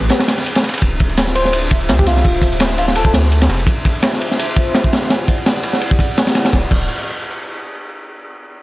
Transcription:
0.00 0.10 A1 loud
0.00 0.36 A3 loud
0.00 0.36 C4 medium
0.00 0.36 G4 medium
0.00 0.36 B4 loud
0.09 snare loud
0.09 closed hi-hat medium
0.09 ride medium
0.20 snare loud
0.20 ride medium
0.28 snare loud
0.28 closed hi-hat medium
0.28 ride medium
0.38 snare soft
0.38 snare medium
0.46 closed hi-hat medium
0.46 ride medium
0.55 snare loud
0.55 ride medium
0.63 snare medium
0.63 closed hi-hat medium
0.69 snare medium
0.69 closed hi-hat medium
0.74 snare medium
0.74 closed hi-hat medium
0.74 ride medium
0.78 snare medium
0.78 closed hi-hat medium
0.78 ride medium
0.82 1.90 D1 medium
0.82 kick loud
0.82 closed hi-hat medium
1.00 kick medium
1.00 closed hi-hat medium
1.00 ride medium
1.09 2.23 D4 medium
1.09 2.23 F4 medium
1.09 2.23 C5 medium
1.09 2.23 E5 medium
1.09 snare medium
1.17 snare loud
1.17 closed hi-hat medium
1.17 ride medium
1.27 snare medium
1.27 closed hi-hat soft
1.35 1.57 C5 medium
1.35 closed hi-hat medium
1.35 ride medium
1.45 snare soft
1.53 closed hi-hat medium
1.53 ride loud
1.71 kick medium
1.71 closed hi-hat medium
1.71 ride medium
1.81 snare soft
1.89 2.05 D2 medium
1.89 snare loud
1.89 closed hi-hat medium
1.89 ride medium
1.99 2.05 G4 medium
1.99 kick loud
1.99 snare soft
2.06 2.23 C2 medium
2.06 2.57 F4 loud
2.06 snare soft
2.06 closed hi-hat medium
2.06 ride medium
2.17 snare soft
2.25 3.13 D1 loud
2.25 kick loud
2.25 closed hi-hat medium
2.25 open hi-hat medium
2.35 snare soft
2.42 kick medium
2.42 closed hi-hat medium
2.42 ride medium
2.52 3.22 D4 loud
2.52 3.22 F4 medium
2.52 3.22 C5 medium
2.52 3.22 E5 loud
2.52 snare soft
2.52 ride soft
2.60 snare loud
2.60 closed hi-hat medium
2.60 ride loud
2.70 snare medium
2.78 2.85 F4 medium
2.78 closed hi-hat medium
2.78 ride medium
2.88 2.93 F4 medium
2.88 snare medium
2.96 3.03 A4 medium
2.96 closed hi-hat medium
2.96 ride medium
3.05 3.11 A4 medium
3.05 kick loud
3.14 3.48 D2 medium
3.14 snare loud
3.14 closed hi-hat medium
3.14 ride medium
3.23 snare soft
3.23 snare medium
3.32 closed hi-hat medium
3.32 ride medium
3.42 snare loud
3.42 ride medium
3.49 3.66 F1 loud
3.49 snare medium
3.49 snare loud
3.49 closed hi-hat medium
3.60 ride medium
3.67 kick loud
3.67 closed hi-hat medium
3.67 ride medium
3.85 kick medium
3.85 closed hi-hat medium
3.85 ride medium
3.95 5.08 D4 medium
3.95 5.08 F4 medium
3.95 5.08 C5 medium
3.95 5.08 E5 loud
3.95 snare medium
4.03 snare loud
4.03 closed hi-hat medium
4.03 ride medium
4.13 snare medium
4.13 closed hi-hat soft
4.21 closed hi-hat medium
4.21 ride medium
4.31 snare soft
4.39 closed hi-hat medium
4.39 ride loud
4.56 kick medium
4.56 closed hi-hat medium
4.56 ride medium
4.67 snare soft
4.75 snare loud
4.75 closed hi-hat medium
4.75 ride medium
4.84 kick medium
4.84 snare soft
4.93 snare loud
4.93 closed hi-hat medium
4.93 ride medium
5.02 snare soft
5.10 snare loud
5.10 closed hi-hat medium
5.10 ride medium
5.20 snare soft
5.28 kick medium
5.28 closed hi-hat medium
5.28 ride medium
5.38 6.08 E4 loud
5.38 6.08 G4 medium
5.38 6.08 D5 loud
5.38 6.08 F#5 loud
5.38 snare soft
5.38 ride soft
5.46 snare loud
5.46 ride medium
5.57 snare soft
5.63 snare loud
5.63 ride medium
5.73 snare medium
5.81 ride medium
5.91 kick medium
5.99 kick loud
5.99 ride medium
6.17 snare loud
6.17 ride medium
6.27 snare loud
6.27 ride medium
6.35 snare loud
6.35 ride medium
6.45 snare loud
6.45 ride medium
6.53 6.64 D1 loud
6.53 kick loud
6.53 snare medium
6.71 6.88 D1 loud
6.71 kick loud
6.71 crash medium

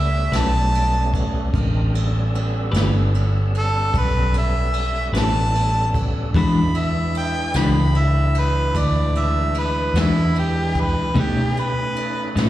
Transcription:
0.00 0.30 C#2 medium
0.00 1.50 G3 medium
0.00 1.49 A3 medium
0.00 1.49 B3 medium
0.00 1.50 C#4 medium
0.00 0.39 E5 medium
0.32 1.49 B1 medium
0.32 0.58 A3 medium
0.32 0.58 C#4 medium
0.32 0.57 G4 medium
0.32 0.57 B4 medium
0.32 snare loud
0.32 ride medium
0.38 1.13 A5 medium
0.75 ride medium
1.14 kick medium
1.14 ride medium
1.53 2.70 A1 medium
1.53 1.93 G#3 medium
1.53 1.93 C4 medium
1.53 1.93 D4 medium
1.53 1.93 A#4 medium
1.53 kick loud
1.53 ride medium
1.93 6.30 G3 medium
1.93 6.30 B3 medium
1.93 6.30 C#4 medium
1.93 6.30 A4 medium
1.93 ride medium
2.35 ride medium
2.72 3.90 G1 medium
2.72 2.97 A3 medium
2.72 2.97 C#4 medium
2.72 2.97 G4 medium
2.72 2.96 B4 medium
2.72 ride medium
2.76 snare loud
3.14 ride medium
3.54 ride medium
3.59 3.95 A4 medium
3.94 5.10 B1 medium
3.94 kick medium
3.94 ride medium
3.98 4.35 B4 medium
4.34 ride medium
4.38 5.14 E5 medium
4.73 ride medium
5.13 6.30 A1 medium
5.13 5.38 A3 medium
5.13 5.38 C#4 medium
5.13 5.38 G4 medium
5.13 5.38 B4 medium
5.13 snare loud
5.13 ride medium
5.19 5.94 A5 loud
5.55 ride medium
5.94 kick medium
5.94 ride medium
6.33 7.51 E2 medium
6.33 11.11 E3 medium
6.33 6.59 E3 medium
6.33 11.11 G#3 medium
6.33 6.59 G#3 medium
6.33 11.11 D4 medium
6.33 6.59 D4 medium
6.33 11.11 E4 medium
6.33 kick loud
6.33 ride medium
6.37 6.60 F#4 medium
6.37 6.79 B5 medium
6.74 7.15 E5 medium
6.74 ride medium
7.15 7.59 G5 medium
7.15 ride medium
7.54 8.71 C#2 medium
7.54 7.80 E3 medium
7.54 7.79 G#3 medium
7.54 7.79 D4 medium
7.54 7.79 F#4 medium
7.54 8.00 B5 medium
7.54 snare loud
7.54 ride medium
7.95 ride medium
7.99 8.35 E5 medium
8.34 ride medium
8.39 8.80 B4 medium
8.75 9.91 D2 medium
8.75 9.20 D5 medium
8.75 kick medium
8.75 ride medium
9.15 9.55 E5 medium
9.15 ride medium
9.54 ride medium
9.59 9.96 B4 medium
9.94 11.11 E2 medium
9.94 10.20 E3 medium
9.94 10.20 G#3 medium
9.94 10.20 D4 medium
9.94 10.20 F#4 medium
9.94 snare loud
9.94 ride medium
10.00 10.37 E4 medium
10.35 10.82 G4 medium
10.35 ride medium
10.75 kick medium
10.75 ride medium
10.81 11.17 B4 medium
11.14 11.39 B2 medium
11.14 12.32 B2 medium
11.14 11.39 A3 medium
11.14 12.49 A3 medium
11.14 12.49 C#4 medium
11.14 11.40 C#4 medium
11.14 11.40 D#4 medium
11.14 12.49 D#4 medium
11.14 12.49 B4 medium
11.14 kick loud
11.14 ride medium
11.20 11.56 G4 medium
11.57 12.35 B4 medium
11.57 ride medium
11.96 ride medium
12.35 12.49 A2 medium
12.35 12.49 B2 medium
12.35 12.49 A3 medium
12.35 12.49 C#4 medium
12.35 12.49 D#4 medium
12.35 snare loud
12.35 ride medium

